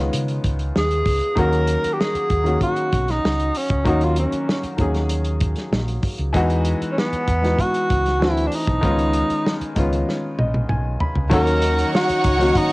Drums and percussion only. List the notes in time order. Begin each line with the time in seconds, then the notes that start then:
0.13 closed hi-hat
0.28 closed hi-hat
0.44 kick, closed hi-hat
0.59 closed hi-hat
0.76 snare
0.91 closed hi-hat
1.05 kick, open hi-hat
1.21 closed hi-hat
1.37 kick, closed hi-hat
1.52 closed hi-hat
1.67 closed hi-hat
1.84 closed hi-hat
2.01 snare
2.15 closed hi-hat
2.30 kick, closed hi-hat
2.46 closed hi-hat
2.61 kick, closed hi-hat
2.76 closed hi-hat
2.92 kick, closed hi-hat
3.08 snare, closed hi-hat
3.25 snare
3.40 closed hi-hat
3.55 open hi-hat
3.70 kick, closed hi-hat
3.86 kick, closed hi-hat
4.01 closed hi-hat
4.16 closed hi-hat
4.32 closed hi-hat
4.49 snare
4.63 closed hi-hat
4.78 kick, closed hi-hat
4.95 snare, closed hi-hat
5.09 closed hi-hat
5.25 closed hi-hat
5.41 kick, closed hi-hat
5.56 snare, closed hi-hat
5.73 snare
5.88 closed hi-hat
6.03 kick, open hi-hat
6.18 closed hi-hat
6.34 kick, closed hi-hat
6.50 closed hi-hat
6.65 closed hi-hat
6.82 closed hi-hat
6.98 snare
7.13 closed hi-hat
7.28 kick, closed hi-hat
7.44 snare, closed hi-hat
7.58 kick, closed hi-hat
7.74 closed hi-hat
7.90 kick, closed hi-hat
8.06 snare, closed hi-hat
8.22 snare
8.37 closed hi-hat
8.52 open hi-hat
8.67 kick, closed hi-hat
8.83 kick, closed hi-hat
8.99 closed hi-hat
9.13 closed hi-hat
9.30 closed hi-hat
9.47 snare
9.61 closed hi-hat
9.76 kick, closed hi-hat
9.93 closed hi-hat
10.09 snare
10.39 high tom
10.54 high tom
10.69 mid tom
11.00 floor tom
11.15 floor tom
11.31 kick, closed hi-hat
11.47 closed hi-hat
11.62 closed hi-hat
11.79 closed hi-hat
11.95 snare
12.09 closed hi-hat
12.24 kick, closed hi-hat
12.41 snare, closed hi-hat
12.55 kick, closed hi-hat